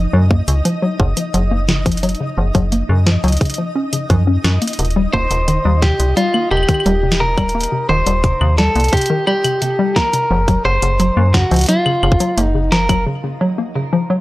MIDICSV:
0, 0, Header, 1, 6, 480
1, 0, Start_track
1, 0, Tempo, 689655
1, 1414, Time_signature, 4, 2, 24, 8
1, 9888, End_track
2, 0, Start_track
2, 0, Title_t, "Synth texture"
2, 0, Program_c, 0, 99
2, 0, Note_on_c, 0, 63, 91
2, 0, Note_on_c, 0, 75, 91
2, 9093, Note_off_c, 0, 63, 0
2, 9093, Note_off_c, 0, 75, 0
2, 9888, End_track
3, 0, Start_track
3, 0, Title_t, "Clean electric guitar"
3, 0, Program_c, 1, 27
3, 3574, Note_on_c, 1, 72, 111
3, 4053, Note_on_c, 1, 67, 97
3, 4068, Note_off_c, 1, 72, 0
3, 4276, Note_off_c, 1, 67, 0
3, 4293, Note_on_c, 1, 65, 93
3, 4530, Note_off_c, 1, 65, 0
3, 4533, Note_on_c, 1, 67, 96
3, 5013, Note_on_c, 1, 70, 107
3, 5028, Note_off_c, 1, 67, 0
3, 5490, Note_off_c, 1, 70, 0
3, 5493, Note_on_c, 1, 72, 105
3, 5970, Note_off_c, 1, 72, 0
3, 5972, Note_on_c, 1, 69, 96
3, 6213, Note_on_c, 1, 67, 91
3, 6220, Note_off_c, 1, 69, 0
3, 6444, Note_off_c, 1, 67, 0
3, 6452, Note_on_c, 1, 67, 90
3, 6933, Note_on_c, 1, 70, 101
3, 6947, Note_off_c, 1, 67, 0
3, 7410, Note_off_c, 1, 70, 0
3, 7413, Note_on_c, 1, 72, 103
3, 7893, Note_on_c, 1, 66, 86
3, 7907, Note_off_c, 1, 72, 0
3, 8130, Note_off_c, 1, 66, 0
3, 8133, Note_on_c, 1, 65, 88
3, 8655, Note_off_c, 1, 65, 0
3, 8655, Note_on_c, 1, 63, 88
3, 8853, Note_on_c, 1, 70, 89
3, 8875, Note_off_c, 1, 63, 0
3, 9076, Note_off_c, 1, 70, 0
3, 9888, End_track
4, 0, Start_track
4, 0, Title_t, "Synth arpeggio sound"
4, 0, Program_c, 2, 84
4, 93, Note_on_c, 2, 54, 99
4, 175, Note_off_c, 2, 54, 0
4, 213, Note_on_c, 2, 58, 78
4, 262, Note_off_c, 2, 58, 0
4, 333, Note_on_c, 2, 49, 81
4, 447, Note_off_c, 2, 49, 0
4, 453, Note_on_c, 2, 53, 99
4, 535, Note_off_c, 2, 53, 0
4, 573, Note_on_c, 2, 54, 96
4, 623, Note_off_c, 2, 54, 0
4, 693, Note_on_c, 2, 49, 74
4, 807, Note_off_c, 2, 49, 0
4, 813, Note_on_c, 2, 53, 76
4, 895, Note_off_c, 2, 53, 0
4, 933, Note_on_c, 2, 54, 98
4, 1015, Note_off_c, 2, 54, 0
4, 1053, Note_on_c, 2, 58, 78
4, 1103, Note_off_c, 2, 58, 0
4, 1173, Note_on_c, 2, 49, 76
4, 1287, Note_off_c, 2, 49, 0
4, 1293, Note_on_c, 2, 53, 101
4, 1375, Note_off_c, 2, 53, 0
4, 1413, Note_on_c, 2, 54, 99
4, 1463, Note_off_c, 2, 54, 0
4, 1533, Note_on_c, 2, 49, 75
4, 1647, Note_off_c, 2, 49, 0
4, 1654, Note_on_c, 2, 53, 77
4, 1735, Note_off_c, 2, 53, 0
4, 1774, Note_on_c, 2, 54, 102
4, 1855, Note_off_c, 2, 54, 0
4, 1894, Note_on_c, 2, 58, 81
4, 1943, Note_off_c, 2, 58, 0
4, 2014, Note_on_c, 2, 49, 78
4, 2127, Note_off_c, 2, 49, 0
4, 2134, Note_on_c, 2, 53, 101
4, 2215, Note_off_c, 2, 53, 0
4, 2254, Note_on_c, 2, 54, 104
4, 2303, Note_off_c, 2, 54, 0
4, 2374, Note_on_c, 2, 49, 83
4, 2488, Note_off_c, 2, 49, 0
4, 2493, Note_on_c, 2, 53, 73
4, 2575, Note_off_c, 2, 53, 0
4, 2613, Note_on_c, 2, 61, 74
4, 2727, Note_off_c, 2, 61, 0
4, 2733, Note_on_c, 2, 49, 74
4, 2847, Note_off_c, 2, 49, 0
4, 2854, Note_on_c, 2, 53, 97
4, 2967, Note_off_c, 2, 53, 0
4, 2973, Note_on_c, 2, 61, 78
4, 3085, Note_off_c, 2, 61, 0
4, 3094, Note_on_c, 2, 61, 73
4, 3175, Note_off_c, 2, 61, 0
4, 3214, Note_on_c, 2, 58, 73
4, 3295, Note_off_c, 2, 58, 0
4, 3334, Note_on_c, 2, 48, 80
4, 3415, Note_off_c, 2, 48, 0
4, 3454, Note_on_c, 2, 55, 100
4, 3535, Note_off_c, 2, 55, 0
4, 3574, Note_on_c, 2, 58, 78
4, 3623, Note_off_c, 2, 58, 0
4, 3694, Note_on_c, 2, 48, 77
4, 3807, Note_off_c, 2, 48, 0
4, 3814, Note_on_c, 2, 51, 101
4, 3895, Note_off_c, 2, 51, 0
4, 3934, Note_on_c, 2, 55, 101
4, 3983, Note_off_c, 2, 55, 0
4, 4053, Note_on_c, 2, 48, 76
4, 4165, Note_off_c, 2, 48, 0
4, 4173, Note_on_c, 2, 48, 79
4, 4255, Note_off_c, 2, 48, 0
4, 4293, Note_on_c, 2, 55, 101
4, 4375, Note_off_c, 2, 55, 0
4, 4414, Note_on_c, 2, 58, 76
4, 4463, Note_off_c, 2, 58, 0
4, 4533, Note_on_c, 2, 48, 73
4, 4647, Note_off_c, 2, 48, 0
4, 4653, Note_on_c, 2, 51, 101
4, 4735, Note_off_c, 2, 51, 0
4, 4773, Note_on_c, 2, 55, 99
4, 4822, Note_off_c, 2, 55, 0
4, 4893, Note_on_c, 2, 48, 76
4, 5005, Note_off_c, 2, 48, 0
4, 5013, Note_on_c, 2, 48, 77
4, 5095, Note_off_c, 2, 48, 0
4, 5133, Note_on_c, 2, 55, 102
4, 5215, Note_off_c, 2, 55, 0
4, 5253, Note_on_c, 2, 58, 83
4, 5303, Note_off_c, 2, 58, 0
4, 5373, Note_on_c, 2, 48, 74
4, 5487, Note_off_c, 2, 48, 0
4, 5493, Note_on_c, 2, 51, 100
4, 5575, Note_off_c, 2, 51, 0
4, 5613, Note_on_c, 2, 55, 99
4, 5663, Note_off_c, 2, 55, 0
4, 5733, Note_on_c, 2, 48, 82
4, 5845, Note_off_c, 2, 48, 0
4, 5853, Note_on_c, 2, 48, 77
4, 5935, Note_off_c, 2, 48, 0
4, 5973, Note_on_c, 2, 55, 104
4, 6055, Note_off_c, 2, 55, 0
4, 6093, Note_on_c, 2, 58, 77
4, 6142, Note_off_c, 2, 58, 0
4, 6213, Note_on_c, 2, 48, 80
4, 6327, Note_off_c, 2, 48, 0
4, 6333, Note_on_c, 2, 51, 102
4, 6415, Note_off_c, 2, 51, 0
4, 6453, Note_on_c, 2, 55, 100
4, 6503, Note_off_c, 2, 55, 0
4, 6573, Note_on_c, 2, 48, 77
4, 6685, Note_off_c, 2, 48, 0
4, 6693, Note_on_c, 2, 48, 79
4, 6775, Note_off_c, 2, 48, 0
4, 6813, Note_on_c, 2, 55, 101
4, 6895, Note_off_c, 2, 55, 0
4, 6933, Note_on_c, 2, 58, 78
4, 6982, Note_off_c, 2, 58, 0
4, 7053, Note_on_c, 2, 48, 76
4, 7167, Note_off_c, 2, 48, 0
4, 7173, Note_on_c, 2, 53, 95
4, 7255, Note_off_c, 2, 53, 0
4, 7293, Note_on_c, 2, 54, 97
4, 7343, Note_off_c, 2, 54, 0
4, 7413, Note_on_c, 2, 49, 78
4, 7525, Note_off_c, 2, 49, 0
4, 7534, Note_on_c, 2, 49, 76
4, 7615, Note_off_c, 2, 49, 0
4, 7653, Note_on_c, 2, 54, 100
4, 7735, Note_off_c, 2, 54, 0
4, 7773, Note_on_c, 2, 58, 76
4, 7822, Note_off_c, 2, 58, 0
4, 7893, Note_on_c, 2, 49, 76
4, 8007, Note_off_c, 2, 49, 0
4, 8014, Note_on_c, 2, 53, 106
4, 8095, Note_off_c, 2, 53, 0
4, 8133, Note_on_c, 2, 54, 98
4, 8183, Note_off_c, 2, 54, 0
4, 8253, Note_on_c, 2, 49, 76
4, 8365, Note_off_c, 2, 49, 0
4, 8374, Note_on_c, 2, 49, 77
4, 8455, Note_off_c, 2, 49, 0
4, 8493, Note_on_c, 2, 54, 96
4, 8575, Note_off_c, 2, 54, 0
4, 8613, Note_on_c, 2, 58, 83
4, 8663, Note_off_c, 2, 58, 0
4, 8733, Note_on_c, 2, 49, 80
4, 8847, Note_off_c, 2, 49, 0
4, 8853, Note_on_c, 2, 53, 99
4, 8935, Note_off_c, 2, 53, 0
4, 8974, Note_on_c, 2, 54, 101
4, 9023, Note_off_c, 2, 54, 0
4, 9093, Note_on_c, 2, 49, 82
4, 9205, Note_off_c, 2, 49, 0
4, 9213, Note_on_c, 2, 49, 74
4, 9295, Note_off_c, 2, 49, 0
4, 9334, Note_on_c, 2, 54, 100
4, 9415, Note_off_c, 2, 54, 0
4, 9453, Note_on_c, 2, 58, 77
4, 9503, Note_off_c, 2, 58, 0
4, 9574, Note_on_c, 2, 49, 82
4, 9688, Note_off_c, 2, 49, 0
4, 9694, Note_on_c, 2, 53, 99
4, 9775, Note_off_c, 2, 53, 0
4, 9814, Note_on_c, 2, 54, 104
4, 9863, Note_off_c, 2, 54, 0
4, 9888, End_track
5, 0, Start_track
5, 0, Title_t, "FM bass"
5, 0, Program_c, 3, 39
5, 93, Note_on_c, 3, 42, 93
5, 291, Note_off_c, 3, 42, 0
5, 333, Note_on_c, 3, 37, 82
5, 432, Note_off_c, 3, 37, 0
5, 693, Note_on_c, 3, 30, 101
5, 792, Note_off_c, 3, 30, 0
5, 934, Note_on_c, 3, 30, 89
5, 1500, Note_off_c, 3, 30, 0
5, 1654, Note_on_c, 3, 30, 93
5, 1752, Note_off_c, 3, 30, 0
5, 1773, Note_on_c, 3, 30, 92
5, 1971, Note_off_c, 3, 30, 0
5, 2013, Note_on_c, 3, 42, 93
5, 2211, Note_off_c, 3, 42, 0
5, 2254, Note_on_c, 3, 37, 79
5, 2352, Note_off_c, 3, 37, 0
5, 2853, Note_on_c, 3, 42, 79
5, 3051, Note_off_c, 3, 42, 0
5, 3093, Note_on_c, 3, 42, 102
5, 3192, Note_off_c, 3, 42, 0
5, 3333, Note_on_c, 3, 27, 96
5, 3531, Note_off_c, 3, 27, 0
5, 3574, Note_on_c, 3, 27, 94
5, 3672, Note_off_c, 3, 27, 0
5, 3694, Note_on_c, 3, 27, 95
5, 3891, Note_off_c, 3, 27, 0
5, 3933, Note_on_c, 3, 39, 89
5, 4131, Note_off_c, 3, 39, 0
5, 4174, Note_on_c, 3, 36, 80
5, 4272, Note_off_c, 3, 36, 0
5, 4534, Note_on_c, 3, 27, 100
5, 4632, Note_off_c, 3, 27, 0
5, 4773, Note_on_c, 3, 27, 93
5, 5340, Note_off_c, 3, 27, 0
5, 5494, Note_on_c, 3, 27, 93
5, 5592, Note_off_c, 3, 27, 0
5, 5614, Note_on_c, 3, 27, 96
5, 5811, Note_off_c, 3, 27, 0
5, 5854, Note_on_c, 3, 39, 92
5, 6051, Note_off_c, 3, 39, 0
5, 6094, Note_on_c, 3, 36, 86
5, 6192, Note_off_c, 3, 36, 0
5, 7174, Note_on_c, 3, 30, 96
5, 7371, Note_off_c, 3, 30, 0
5, 7413, Note_on_c, 3, 30, 92
5, 7512, Note_off_c, 3, 30, 0
5, 7533, Note_on_c, 3, 30, 93
5, 7731, Note_off_c, 3, 30, 0
5, 7773, Note_on_c, 3, 42, 93
5, 7971, Note_off_c, 3, 42, 0
5, 8014, Note_on_c, 3, 37, 84
5, 8112, Note_off_c, 3, 37, 0
5, 8374, Note_on_c, 3, 30, 99
5, 8472, Note_off_c, 3, 30, 0
5, 8613, Note_on_c, 3, 30, 89
5, 9093, Note_off_c, 3, 30, 0
5, 9888, End_track
6, 0, Start_track
6, 0, Title_t, "Drums"
6, 213, Note_on_c, 9, 36, 116
6, 283, Note_off_c, 9, 36, 0
6, 334, Note_on_c, 9, 42, 66
6, 403, Note_off_c, 9, 42, 0
6, 454, Note_on_c, 9, 42, 50
6, 523, Note_off_c, 9, 42, 0
6, 693, Note_on_c, 9, 36, 116
6, 763, Note_off_c, 9, 36, 0
6, 814, Note_on_c, 9, 42, 69
6, 883, Note_off_c, 9, 42, 0
6, 934, Note_on_c, 9, 42, 52
6, 1003, Note_off_c, 9, 42, 0
6, 1174, Note_on_c, 9, 38, 123
6, 1243, Note_off_c, 9, 38, 0
6, 1293, Note_on_c, 9, 36, 112
6, 1294, Note_on_c, 9, 42, 64
6, 1334, Note_off_c, 9, 42, 0
6, 1334, Note_on_c, 9, 42, 52
6, 1363, Note_off_c, 9, 36, 0
6, 1374, Note_off_c, 9, 42, 0
6, 1374, Note_on_c, 9, 42, 42
6, 1414, Note_off_c, 9, 42, 0
6, 1414, Note_on_c, 9, 42, 49
6, 1454, Note_off_c, 9, 42, 0
6, 1454, Note_on_c, 9, 42, 28
6, 1494, Note_off_c, 9, 42, 0
6, 1494, Note_on_c, 9, 42, 23
6, 1563, Note_off_c, 9, 42, 0
6, 1773, Note_on_c, 9, 36, 120
6, 1774, Note_on_c, 9, 42, 66
6, 1843, Note_off_c, 9, 36, 0
6, 1843, Note_off_c, 9, 42, 0
6, 1894, Note_on_c, 9, 42, 51
6, 1963, Note_off_c, 9, 42, 0
6, 2133, Note_on_c, 9, 38, 116
6, 2203, Note_off_c, 9, 38, 0
6, 2253, Note_on_c, 9, 42, 28
6, 2283, Note_off_c, 9, 42, 0
6, 2283, Note_on_c, 9, 42, 33
6, 2313, Note_off_c, 9, 42, 0
6, 2313, Note_on_c, 9, 42, 36
6, 2343, Note_off_c, 9, 42, 0
6, 2343, Note_on_c, 9, 42, 40
6, 2373, Note_off_c, 9, 42, 0
6, 2373, Note_on_c, 9, 36, 109
6, 2373, Note_on_c, 9, 42, 51
6, 2403, Note_off_c, 9, 42, 0
6, 2403, Note_on_c, 9, 42, 46
6, 2433, Note_off_c, 9, 42, 0
6, 2433, Note_on_c, 9, 42, 52
6, 2443, Note_off_c, 9, 36, 0
6, 2463, Note_off_c, 9, 42, 0
6, 2463, Note_on_c, 9, 42, 54
6, 2533, Note_off_c, 9, 42, 0
6, 2734, Note_on_c, 9, 42, 64
6, 2803, Note_off_c, 9, 42, 0
6, 2853, Note_on_c, 9, 36, 118
6, 2854, Note_on_c, 9, 42, 51
6, 2923, Note_off_c, 9, 36, 0
6, 2923, Note_off_c, 9, 42, 0
6, 3094, Note_on_c, 9, 38, 121
6, 3163, Note_off_c, 9, 38, 0
6, 3214, Note_on_c, 9, 42, 59
6, 3254, Note_off_c, 9, 42, 0
6, 3254, Note_on_c, 9, 42, 49
6, 3294, Note_off_c, 9, 42, 0
6, 3294, Note_on_c, 9, 42, 40
6, 3333, Note_off_c, 9, 42, 0
6, 3333, Note_on_c, 9, 42, 47
6, 3374, Note_off_c, 9, 42, 0
6, 3374, Note_on_c, 9, 42, 26
6, 3414, Note_off_c, 9, 42, 0
6, 3414, Note_on_c, 9, 42, 22
6, 3483, Note_off_c, 9, 42, 0
6, 3573, Note_on_c, 9, 36, 100
6, 3643, Note_off_c, 9, 36, 0
6, 3694, Note_on_c, 9, 42, 62
6, 3763, Note_off_c, 9, 42, 0
6, 3814, Note_on_c, 9, 42, 50
6, 3883, Note_off_c, 9, 42, 0
6, 4054, Note_on_c, 9, 36, 122
6, 4054, Note_on_c, 9, 38, 116
6, 4123, Note_off_c, 9, 36, 0
6, 4123, Note_off_c, 9, 38, 0
6, 4174, Note_on_c, 9, 42, 64
6, 4243, Note_off_c, 9, 42, 0
6, 4294, Note_on_c, 9, 42, 47
6, 4363, Note_off_c, 9, 42, 0
6, 4414, Note_on_c, 9, 75, 49
6, 4483, Note_off_c, 9, 75, 0
6, 4533, Note_on_c, 9, 75, 23
6, 4573, Note_off_c, 9, 75, 0
6, 4573, Note_on_c, 9, 75, 27
6, 4614, Note_off_c, 9, 75, 0
6, 4614, Note_on_c, 9, 75, 31
6, 4653, Note_off_c, 9, 75, 0
6, 4653, Note_on_c, 9, 36, 102
6, 4653, Note_on_c, 9, 42, 65
6, 4653, Note_on_c, 9, 75, 36
6, 4694, Note_off_c, 9, 75, 0
6, 4694, Note_on_c, 9, 75, 41
6, 4723, Note_off_c, 9, 36, 0
6, 4723, Note_off_c, 9, 42, 0
6, 4734, Note_off_c, 9, 75, 0
6, 4734, Note_on_c, 9, 75, 45
6, 4774, Note_on_c, 9, 42, 47
6, 4803, Note_off_c, 9, 75, 0
6, 4843, Note_off_c, 9, 42, 0
6, 4953, Note_on_c, 9, 38, 118
6, 5023, Note_off_c, 9, 38, 0
6, 5133, Note_on_c, 9, 36, 120
6, 5134, Note_on_c, 9, 42, 28
6, 5134, Note_on_c, 9, 75, 57
6, 5203, Note_off_c, 9, 36, 0
6, 5203, Note_off_c, 9, 42, 0
6, 5203, Note_off_c, 9, 75, 0
6, 5213, Note_on_c, 9, 42, 39
6, 5283, Note_off_c, 9, 42, 0
6, 5293, Note_on_c, 9, 42, 46
6, 5313, Note_off_c, 9, 42, 0
6, 5313, Note_on_c, 9, 42, 49
6, 5383, Note_off_c, 9, 42, 0
6, 5613, Note_on_c, 9, 42, 62
6, 5683, Note_off_c, 9, 42, 0
6, 5733, Note_on_c, 9, 36, 98
6, 5733, Note_on_c, 9, 42, 49
6, 5803, Note_off_c, 9, 36, 0
6, 5803, Note_off_c, 9, 42, 0
6, 5853, Note_on_c, 9, 75, 37
6, 5923, Note_off_c, 9, 75, 0
6, 5973, Note_on_c, 9, 38, 113
6, 6043, Note_off_c, 9, 38, 0
6, 6093, Note_on_c, 9, 42, 27
6, 6123, Note_off_c, 9, 42, 0
6, 6123, Note_on_c, 9, 42, 32
6, 6153, Note_off_c, 9, 42, 0
6, 6153, Note_on_c, 9, 42, 35
6, 6183, Note_off_c, 9, 42, 0
6, 6183, Note_on_c, 9, 42, 39
6, 6213, Note_off_c, 9, 42, 0
6, 6213, Note_on_c, 9, 36, 113
6, 6213, Note_on_c, 9, 42, 49
6, 6243, Note_off_c, 9, 42, 0
6, 6243, Note_on_c, 9, 42, 47
6, 6274, Note_off_c, 9, 42, 0
6, 6274, Note_on_c, 9, 42, 50
6, 6283, Note_off_c, 9, 36, 0
6, 6304, Note_off_c, 9, 42, 0
6, 6304, Note_on_c, 9, 42, 54
6, 6373, Note_off_c, 9, 42, 0
6, 6453, Note_on_c, 9, 75, 51
6, 6523, Note_off_c, 9, 75, 0
6, 6574, Note_on_c, 9, 42, 65
6, 6574, Note_on_c, 9, 75, 53
6, 6643, Note_off_c, 9, 42, 0
6, 6643, Note_off_c, 9, 75, 0
6, 6694, Note_on_c, 9, 42, 50
6, 6763, Note_off_c, 9, 42, 0
6, 6933, Note_on_c, 9, 36, 100
6, 6933, Note_on_c, 9, 38, 111
6, 7003, Note_off_c, 9, 36, 0
6, 7003, Note_off_c, 9, 38, 0
6, 7054, Note_on_c, 9, 42, 61
6, 7123, Note_off_c, 9, 42, 0
6, 7294, Note_on_c, 9, 36, 111
6, 7294, Note_on_c, 9, 42, 50
6, 7363, Note_off_c, 9, 36, 0
6, 7363, Note_off_c, 9, 42, 0
6, 7533, Note_on_c, 9, 42, 66
6, 7603, Note_off_c, 9, 42, 0
6, 7653, Note_on_c, 9, 42, 53
6, 7723, Note_off_c, 9, 42, 0
6, 7893, Note_on_c, 9, 36, 102
6, 7893, Note_on_c, 9, 38, 110
6, 7963, Note_off_c, 9, 36, 0
6, 7963, Note_off_c, 9, 38, 0
6, 8014, Note_on_c, 9, 42, 29
6, 8031, Note_off_c, 9, 42, 0
6, 8031, Note_on_c, 9, 42, 33
6, 8048, Note_off_c, 9, 42, 0
6, 8048, Note_on_c, 9, 42, 37
6, 8065, Note_off_c, 9, 42, 0
6, 8065, Note_on_c, 9, 42, 43
6, 8082, Note_off_c, 9, 42, 0
6, 8082, Note_on_c, 9, 42, 47
6, 8099, Note_off_c, 9, 42, 0
6, 8099, Note_on_c, 9, 42, 51
6, 8116, Note_off_c, 9, 42, 0
6, 8116, Note_on_c, 9, 42, 55
6, 8133, Note_off_c, 9, 42, 0
6, 8133, Note_on_c, 9, 42, 52
6, 8203, Note_off_c, 9, 42, 0
6, 8253, Note_on_c, 9, 75, 56
6, 8323, Note_off_c, 9, 75, 0
6, 8373, Note_on_c, 9, 75, 56
6, 8433, Note_on_c, 9, 36, 112
6, 8443, Note_off_c, 9, 75, 0
6, 8493, Note_on_c, 9, 42, 66
6, 8503, Note_off_c, 9, 36, 0
6, 8563, Note_off_c, 9, 42, 0
6, 8613, Note_on_c, 9, 42, 52
6, 8683, Note_off_c, 9, 42, 0
6, 8854, Note_on_c, 9, 38, 113
6, 8923, Note_off_c, 9, 38, 0
6, 8973, Note_on_c, 9, 36, 100
6, 8974, Note_on_c, 9, 42, 61
6, 8974, Note_on_c, 9, 75, 62
6, 9043, Note_off_c, 9, 36, 0
6, 9043, Note_off_c, 9, 42, 0
6, 9043, Note_off_c, 9, 75, 0
6, 9888, End_track
0, 0, End_of_file